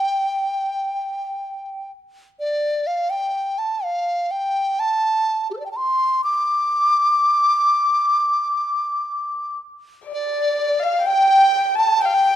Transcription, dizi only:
0, 0, Header, 1, 2, 480
1, 0, Start_track
1, 0, Tempo, 950872
1, 1200, Time_signature, 4, 2, 24, 8
1, 3125, Tempo, 970874
1, 6174, End_track
2, 0, Start_track
2, 0, Title_t, "Dizi"
2, 0, Program_c, 0, 73
2, 0, Note_on_c, 0, 79, 81
2, 963, Note_off_c, 0, 79, 0
2, 1209, Note_on_c, 0, 74, 68
2, 1447, Note_on_c, 0, 77, 67
2, 1455, Note_off_c, 0, 74, 0
2, 1564, Note_on_c, 0, 79, 65
2, 1572, Note_off_c, 0, 77, 0
2, 1809, Note_on_c, 0, 81, 64
2, 1816, Note_off_c, 0, 79, 0
2, 1939, Note_on_c, 0, 77, 66
2, 1947, Note_off_c, 0, 81, 0
2, 2175, Note_on_c, 0, 79, 76
2, 2182, Note_off_c, 0, 77, 0
2, 2420, Note_on_c, 0, 81, 81
2, 2428, Note_off_c, 0, 79, 0
2, 2776, Note_off_c, 0, 81, 0
2, 2779, Note_on_c, 0, 67, 37
2, 2786, Note_on_c, 0, 69, 33
2, 2789, Note_off_c, 0, 67, 0
2, 2807, Note_off_c, 0, 69, 0
2, 2810, Note_on_c, 0, 72, 37
2, 2823, Note_off_c, 0, 72, 0
2, 2826, Note_on_c, 0, 74, 38
2, 2851, Note_off_c, 0, 74, 0
2, 2854, Note_on_c, 0, 79, 43
2, 2864, Note_off_c, 0, 79, 0
2, 2885, Note_on_c, 0, 81, 46
2, 2909, Note_on_c, 0, 84, 72
2, 2917, Note_off_c, 0, 81, 0
2, 3137, Note_off_c, 0, 84, 0
2, 3148, Note_on_c, 0, 86, 88
2, 4800, Note_off_c, 0, 86, 0
2, 5073, Note_on_c, 0, 74, 87
2, 5421, Note_on_c, 0, 77, 83
2, 5428, Note_off_c, 0, 74, 0
2, 5533, Note_on_c, 0, 79, 98
2, 5541, Note_off_c, 0, 77, 0
2, 5884, Note_off_c, 0, 79, 0
2, 5887, Note_on_c, 0, 81, 86
2, 6006, Note_on_c, 0, 79, 101
2, 6014, Note_off_c, 0, 81, 0
2, 6174, Note_off_c, 0, 79, 0
2, 6174, End_track
0, 0, End_of_file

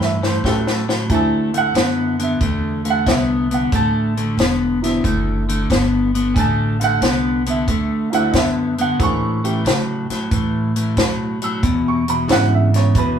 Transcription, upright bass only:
0, 0, Header, 1, 3, 480
1, 0, Start_track
1, 0, Tempo, 658617
1, 799, Time_signature, 4, 2, 24, 8
1, 9614, End_track
2, 0, Start_track
2, 0, Title_t, "Upright bass"
2, 0, Program_c, 0, 32
2, 0, Note_on_c, 0, 43, 84
2, 305, Note_off_c, 0, 43, 0
2, 320, Note_on_c, 0, 45, 79
2, 784, Note_off_c, 0, 45, 0
2, 800, Note_on_c, 0, 38, 76
2, 1264, Note_off_c, 0, 38, 0
2, 1268, Note_on_c, 0, 42, 84
2, 1737, Note_off_c, 0, 42, 0
2, 1753, Note_on_c, 0, 40, 82
2, 2219, Note_off_c, 0, 40, 0
2, 2234, Note_on_c, 0, 36, 89
2, 2699, Note_off_c, 0, 36, 0
2, 2713, Note_on_c, 0, 33, 81
2, 3179, Note_off_c, 0, 33, 0
2, 3187, Note_on_c, 0, 28, 92
2, 3655, Note_off_c, 0, 28, 0
2, 3675, Note_on_c, 0, 30, 80
2, 4139, Note_off_c, 0, 30, 0
2, 4154, Note_on_c, 0, 31, 82
2, 4618, Note_off_c, 0, 31, 0
2, 4633, Note_on_c, 0, 33, 89
2, 5098, Note_off_c, 0, 33, 0
2, 5109, Note_on_c, 0, 36, 91
2, 5576, Note_off_c, 0, 36, 0
2, 5593, Note_on_c, 0, 38, 80
2, 6059, Note_off_c, 0, 38, 0
2, 6073, Note_on_c, 0, 42, 86
2, 6539, Note_off_c, 0, 42, 0
2, 6558, Note_on_c, 0, 45, 79
2, 7021, Note_off_c, 0, 45, 0
2, 7031, Note_on_c, 0, 49, 93
2, 7335, Note_off_c, 0, 49, 0
2, 7516, Note_on_c, 0, 45, 81
2, 7981, Note_off_c, 0, 45, 0
2, 7996, Note_on_c, 0, 47, 82
2, 8462, Note_off_c, 0, 47, 0
2, 8476, Note_on_c, 0, 40, 85
2, 8943, Note_off_c, 0, 40, 0
2, 8951, Note_on_c, 0, 44, 96
2, 9421, Note_off_c, 0, 44, 0
2, 9435, Note_on_c, 0, 42, 81
2, 9614, Note_off_c, 0, 42, 0
2, 9614, End_track
3, 0, Start_track
3, 0, Title_t, "Muted upright bass strokes"
3, 7358, Note_on_c, 9, 29, 39
3, 7430, Note_off_c, 9, 29, 0
3, 9614, End_track
0, 0, End_of_file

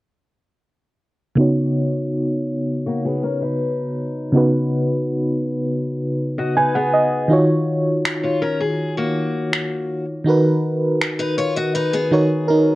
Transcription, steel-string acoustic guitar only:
0, 0, Header, 1, 2, 480
1, 0, Start_track
1, 0, Tempo, 740741
1, 895, Time_signature, 4, 2, 24, 8
1, 8263, End_track
2, 0, Start_track
2, 0, Title_t, "Steel-string acoustic guitar"
2, 0, Program_c, 0, 25
2, 1855, Note_on_c, 0, 66, 67
2, 1860, Note_on_c, 0, 58, 59
2, 1969, Note_off_c, 0, 66, 0
2, 1971, Note_off_c, 0, 58, 0
2, 1976, Note_on_c, 0, 68, 71
2, 1980, Note_on_c, 0, 59, 62
2, 2089, Note_off_c, 0, 68, 0
2, 2092, Note_off_c, 0, 59, 0
2, 2095, Note_on_c, 0, 70, 76
2, 2098, Note_on_c, 0, 61, 60
2, 2209, Note_off_c, 0, 70, 0
2, 2211, Note_off_c, 0, 61, 0
2, 2215, Note_on_c, 0, 71, 61
2, 2219, Note_on_c, 0, 63, 52
2, 2909, Note_off_c, 0, 71, 0
2, 2911, Note_off_c, 0, 63, 0
2, 4135, Note_on_c, 0, 75, 70
2, 4139, Note_on_c, 0, 66, 56
2, 4249, Note_off_c, 0, 75, 0
2, 4251, Note_off_c, 0, 66, 0
2, 4255, Note_on_c, 0, 71, 73
2, 4259, Note_on_c, 0, 63, 64
2, 4369, Note_off_c, 0, 71, 0
2, 4371, Note_off_c, 0, 63, 0
2, 4375, Note_on_c, 0, 68, 71
2, 4379, Note_on_c, 0, 59, 62
2, 4717, Note_off_c, 0, 68, 0
2, 4719, Note_off_c, 0, 59, 0
2, 5335, Note_on_c, 0, 73, 67
2, 5340, Note_on_c, 0, 65, 57
2, 5449, Note_off_c, 0, 73, 0
2, 5451, Note_off_c, 0, 65, 0
2, 5454, Note_on_c, 0, 70, 77
2, 5458, Note_on_c, 0, 61, 62
2, 5568, Note_off_c, 0, 70, 0
2, 5570, Note_off_c, 0, 61, 0
2, 5575, Note_on_c, 0, 68, 75
2, 5803, Note_off_c, 0, 68, 0
2, 5814, Note_on_c, 0, 66, 69
2, 5818, Note_on_c, 0, 58, 62
2, 6508, Note_off_c, 0, 66, 0
2, 6510, Note_off_c, 0, 58, 0
2, 7252, Note_on_c, 0, 71, 70
2, 7256, Note_on_c, 0, 63, 60
2, 7367, Note_off_c, 0, 71, 0
2, 7370, Note_off_c, 0, 63, 0
2, 7374, Note_on_c, 0, 73, 80
2, 7378, Note_on_c, 0, 65, 65
2, 7488, Note_off_c, 0, 73, 0
2, 7490, Note_off_c, 0, 65, 0
2, 7493, Note_on_c, 0, 75, 78
2, 7497, Note_on_c, 0, 66, 65
2, 7608, Note_off_c, 0, 75, 0
2, 7610, Note_off_c, 0, 66, 0
2, 7613, Note_on_c, 0, 71, 80
2, 7617, Note_on_c, 0, 63, 69
2, 7728, Note_off_c, 0, 71, 0
2, 7730, Note_off_c, 0, 63, 0
2, 7732, Note_on_c, 0, 68, 67
2, 7736, Note_on_c, 0, 59, 56
2, 8263, Note_off_c, 0, 59, 0
2, 8263, Note_off_c, 0, 68, 0
2, 8263, End_track
0, 0, End_of_file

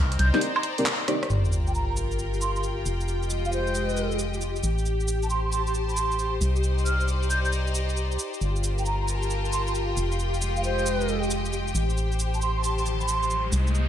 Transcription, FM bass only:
0, 0, Header, 1, 2, 480
1, 0, Start_track
1, 0, Key_signature, -2, "minor"
1, 0, Tempo, 444444
1, 1408, Time_signature, 4, 2, 24, 8
1, 14996, End_track
2, 0, Start_track
2, 0, Title_t, "FM bass"
2, 0, Program_c, 0, 39
2, 0, Note_on_c, 0, 36, 107
2, 185, Note_off_c, 0, 36, 0
2, 209, Note_on_c, 0, 36, 102
2, 339, Note_off_c, 0, 36, 0
2, 1406, Note_on_c, 0, 31, 82
2, 3071, Note_off_c, 0, 31, 0
2, 3088, Note_on_c, 0, 29, 86
2, 4992, Note_off_c, 0, 29, 0
2, 5007, Note_on_c, 0, 33, 85
2, 6912, Note_off_c, 0, 33, 0
2, 6925, Note_on_c, 0, 36, 84
2, 8831, Note_off_c, 0, 36, 0
2, 9088, Note_on_c, 0, 31, 88
2, 10752, Note_off_c, 0, 31, 0
2, 10769, Note_on_c, 0, 29, 83
2, 12672, Note_off_c, 0, 29, 0
2, 12689, Note_on_c, 0, 33, 84
2, 14592, Note_off_c, 0, 33, 0
2, 14607, Note_on_c, 0, 36, 87
2, 14996, Note_off_c, 0, 36, 0
2, 14996, End_track
0, 0, End_of_file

